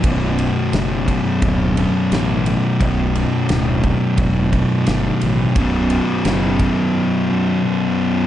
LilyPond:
<<
  \new Staff \with { instrumentName = "Distorted electric guitar" } { \clef bass \time 4/4 \key c \lydian \tempo 4 = 87 <b,, fis, b,>1 | <b,, fis, b,>1 | <b,, fis, b,>1 | }
  \new Staff \with { instrumentName = "Distorted electric guitar" } { \clef bass \time 4/4 \key c \lydian <b,, fis, b,>2~ <b,, fis, b,>8 <b,, fis, b,>8 <b,, fis, b,>4 | <b,, fis, b,>2~ <b,, fis, b,>8 <b,, fis, b,>8 <b,, fis, b,>4 | <b,, fis, b,>2~ <b,, fis, b,>8 <b,, fis, b,>8 <b,, fis, b,>4 | }
  \new Staff \with { instrumentName = "Fingered electric bass" } { \clef bass \time 4/4 \key c \lydian b,,,4 fis,,4 d,,4 a,,4 | b,,,4 d,,4 e,,4 g,,8 a,,8 | b,,,4 fis,,4 r2 | }
  \new DrumStaff \with { instrumentName = "Drums" } \drummode { \time 4/4 <bd cymr>8 cymr8 <cymr sn>8 <bd cymr>8 <bd cymr>8 cymr8 <cymr sn>8 cymr8 | <bd cymr>8 cymr8 <cymr sn>8 <bd cymr>8 <bd cymr>8 <bd cymr>8 <cymr sn>8 cymr8 | <bd cymr>8 cymr8 <cymr sn>8 <bd cymr>8 r4 r4 | }
>>